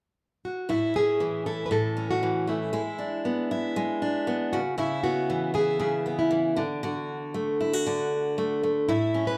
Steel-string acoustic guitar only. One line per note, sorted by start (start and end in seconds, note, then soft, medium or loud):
0.69 1.70 A2 medium
0.69 1.46 E4 medium
0.96 1.95 C#4 soft
1.20 2.22 E3 medium
1.46 2.73 E4 medium
1.71 2.79 A2 medium
1.97 2.79 C#4 medium
2.23 2.72 E3 medium
2.47 2.79 A3 medium
2.73 3.76 G#3 medium
2.73 3.51 E4 medium
2.98 4.01 D4 soft
3.25 4.27 B3 medium
3.51 4.59 E4 medium
3.76 4.58 G#3 medium
4.02 4.58 D4 medium
4.27 4.58 B3 medium
4.53 4.76 C#3 medium
4.78 5.78 C#3 medium
4.78 5.53 E4 medium
5.04 6.05 B3 medium
5.30 6.29 E3 medium
5.54 6.62 E4 medium
5.80 6.62 C#3 medium
6.06 6.63 B3 medium
6.31 6.56 E3 medium
6.56 6.82 D3 medium
6.83 7.85 D3 medium
6.83 7.60 F#4 soft
7.34 8.37 A3 medium
7.61 7.73 E4 medium
7.73 8.89 F#4 medium
7.86 8.94 D3 medium
8.38 8.63 A3 medium
8.63 8.94 A3 medium
8.89 9.38 A2 medium
8.89 9.38 E4 medium
9.14 9.38 C#4 soft